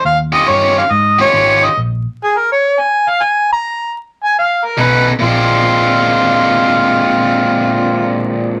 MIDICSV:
0, 0, Header, 1, 4, 480
1, 0, Start_track
1, 0, Tempo, 431034
1, 48, Time_signature, 4, 2, 24, 8
1, 9577, End_track
2, 0, Start_track
2, 0, Title_t, "Harmonica"
2, 0, Program_c, 0, 22
2, 61, Note_on_c, 0, 77, 100
2, 201, Note_off_c, 0, 77, 0
2, 380, Note_on_c, 0, 75, 96
2, 545, Note_on_c, 0, 73, 91
2, 562, Note_off_c, 0, 75, 0
2, 854, Note_off_c, 0, 73, 0
2, 865, Note_on_c, 0, 77, 95
2, 1024, Note_on_c, 0, 75, 94
2, 1041, Note_off_c, 0, 77, 0
2, 1333, Note_off_c, 0, 75, 0
2, 1344, Note_on_c, 0, 73, 99
2, 1830, Note_on_c, 0, 75, 89
2, 1847, Note_off_c, 0, 73, 0
2, 1979, Note_off_c, 0, 75, 0
2, 2492, Note_on_c, 0, 68, 93
2, 2641, Note_on_c, 0, 70, 81
2, 2658, Note_off_c, 0, 68, 0
2, 2779, Note_off_c, 0, 70, 0
2, 2803, Note_on_c, 0, 73, 81
2, 3112, Note_on_c, 0, 80, 83
2, 3129, Note_off_c, 0, 73, 0
2, 3440, Note_on_c, 0, 77, 90
2, 3457, Note_off_c, 0, 80, 0
2, 3597, Note_on_c, 0, 80, 79
2, 3614, Note_off_c, 0, 77, 0
2, 3892, Note_off_c, 0, 80, 0
2, 3925, Note_on_c, 0, 82, 99
2, 4371, Note_off_c, 0, 82, 0
2, 4722, Note_on_c, 0, 80, 89
2, 4860, Note_off_c, 0, 80, 0
2, 4882, Note_on_c, 0, 77, 85
2, 5180, Note_on_c, 0, 70, 85
2, 5197, Note_off_c, 0, 77, 0
2, 5352, Note_on_c, 0, 71, 93
2, 5369, Note_off_c, 0, 70, 0
2, 5647, Note_off_c, 0, 71, 0
2, 5803, Note_on_c, 0, 65, 88
2, 9185, Note_off_c, 0, 65, 0
2, 9577, End_track
3, 0, Start_track
3, 0, Title_t, "Overdriven electric guitar"
3, 0, Program_c, 1, 29
3, 360, Note_on_c, 1, 67, 87
3, 364, Note_on_c, 1, 65, 80
3, 370, Note_on_c, 1, 61, 75
3, 371, Note_on_c, 1, 51, 67
3, 504, Note_off_c, 1, 51, 0
3, 508, Note_off_c, 1, 61, 0
3, 514, Note_off_c, 1, 65, 0
3, 517, Note_on_c, 1, 51, 71
3, 519, Note_off_c, 1, 67, 0
3, 522, Note_on_c, 1, 61, 75
3, 527, Note_on_c, 1, 65, 76
3, 532, Note_on_c, 1, 67, 73
3, 889, Note_off_c, 1, 51, 0
3, 891, Note_off_c, 1, 61, 0
3, 894, Note_off_c, 1, 65, 0
3, 896, Note_off_c, 1, 67, 0
3, 1323, Note_on_c, 1, 67, 102
3, 1324, Note_on_c, 1, 65, 91
3, 1330, Note_on_c, 1, 61, 89
3, 1334, Note_on_c, 1, 51, 76
3, 1463, Note_off_c, 1, 51, 0
3, 1468, Note_off_c, 1, 61, 0
3, 1471, Note_off_c, 1, 65, 0
3, 1476, Note_off_c, 1, 67, 0
3, 1477, Note_on_c, 1, 51, 67
3, 1482, Note_on_c, 1, 61, 71
3, 1484, Note_on_c, 1, 65, 68
3, 1489, Note_on_c, 1, 67, 69
3, 1848, Note_off_c, 1, 51, 0
3, 1850, Note_off_c, 1, 61, 0
3, 1852, Note_off_c, 1, 65, 0
3, 1854, Note_off_c, 1, 67, 0
3, 5313, Note_on_c, 1, 47, 68
3, 5316, Note_on_c, 1, 57, 67
3, 5319, Note_on_c, 1, 63, 77
3, 5321, Note_on_c, 1, 61, 70
3, 5685, Note_off_c, 1, 47, 0
3, 5686, Note_off_c, 1, 57, 0
3, 5688, Note_off_c, 1, 63, 0
3, 5689, Note_off_c, 1, 61, 0
3, 5777, Note_on_c, 1, 46, 83
3, 5800, Note_on_c, 1, 56, 90
3, 5813, Note_on_c, 1, 60, 92
3, 5823, Note_on_c, 1, 62, 96
3, 9577, Note_off_c, 1, 46, 0
3, 9577, Note_off_c, 1, 56, 0
3, 9577, Note_off_c, 1, 60, 0
3, 9577, Note_off_c, 1, 62, 0
3, 9577, End_track
4, 0, Start_track
4, 0, Title_t, "Fingered electric bass"
4, 0, Program_c, 2, 33
4, 54, Note_on_c, 2, 39, 92
4, 417, Note_off_c, 2, 39, 0
4, 542, Note_on_c, 2, 43, 91
4, 901, Note_off_c, 2, 43, 0
4, 1008, Note_on_c, 2, 44, 95
4, 1373, Note_off_c, 2, 44, 0
4, 1486, Note_on_c, 2, 32, 92
4, 1851, Note_off_c, 2, 32, 0
4, 1973, Note_on_c, 2, 34, 85
4, 2286, Note_off_c, 2, 34, 0
4, 5325, Note_on_c, 2, 35, 86
4, 5690, Note_off_c, 2, 35, 0
4, 5807, Note_on_c, 2, 34, 90
4, 9189, Note_off_c, 2, 34, 0
4, 9577, End_track
0, 0, End_of_file